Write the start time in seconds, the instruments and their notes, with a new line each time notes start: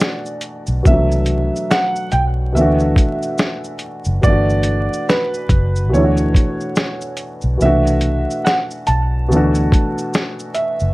Already playing: upright piano B2 E3 A3 D4 F#4, felt piano D5
0.00 snare, shaker
0.26 shaker
0.41 closed hi-hat, shaker
0.67 fingered electric bass B1, shaker
0.83 fingered electric bass C2, upright piano B2 E3, kick, shaker
0.87 upright piano A3 D4, felt piano E5
0.91 upright piano F#3
1.12 shaker
1.26 closed hi-hat, shaker
1.56 shaker
1.71 felt piano F#5, snare, shaker
1.96 shaker
2.12 fingered electric bass B1, felt piano G5, closed hi-hat, shaker
2.53 fingered electric bass D2, upright piano B2 E3, felt piano E5, shaker
2.57 upright piano A3 D4
2.61 upright piano F#4
2.80 shaker
2.96 kick, closed hi-hat, shaker
3.22 shaker
3.38 snare, shaker
3.64 shaker
3.79 closed hi-hat, shaker
4.04 fingered electric bass F#1, shaker
4.21 fingered electric bass G1, upright piano B2 E3, felt piano D5, kick, shaker
4.25 upright piano A3 D4
4.30 upright piano F#4
4.50 shaker
4.63 closed hi-hat, shaker
4.93 shaker
5.09 felt piano B4, snare, shaker
5.34 shaker
5.49 fingered electric bass F#1, kick, closed hi-hat, shaker
5.76 shaker
5.89 fingered electric bass D2, upright piano B2 E3
5.93 upright piano A3 D4, felt piano C#5, shaker
5.98 upright piano E4
6.04 upright piano F#4
6.17 shaker
6.34 kick, closed hi-hat, shaker
6.60 shaker
6.76 snare, shaker
7.01 shaker
7.17 closed hi-hat, shaker
7.41 fingered electric bass B1, shaker
7.57 fingered electric bass C2, upright piano B2 E3 A3, shaker
7.62 upright piano D4 F#4, felt piano E5
7.87 shaker
8.01 closed hi-hat, shaker
8.30 shaker
8.45 felt piano F#5, snare, shaker
8.71 shaker
8.87 fingered electric bass B1, felt piano A5, closed hi-hat, shaker
9.28 fingered electric bass D2, upright piano B2 E3, shaker
9.32 upright piano A3 D4
9.36 upright piano F#4
9.55 shaker
9.72 kick, closed hi-hat, shaker
9.98 shaker
10.14 snare, shaker
10.39 shaker
10.54 felt piano E5, closed hi-hat, shaker
10.80 fingered electric bass F#1, shaker